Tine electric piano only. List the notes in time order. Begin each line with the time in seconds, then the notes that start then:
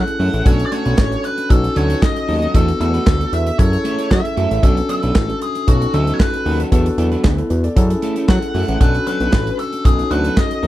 Already playing: C#4 E4 G#4 A4
0.45 C#4 D4 F#4 A4
1.49 C#4 D#4 F#4 A4
2.54 B3 D4 F#4 A4
3.58 C#4 E4 G#4 A4
4.62 C#4 D4 F#4 A4
5.67 C#4 D#4 F#4 A4
6.71 B3 D4 F#4 A4
7.24 D4 G#4
7.38 E4 A4
7.50 F#4 B4
7.64 A4 D5
7.75 C#4 E4 G#4 A4
8.80 C#4 D4 F#4 A4
9.84 C#4 D#4 F#4 A4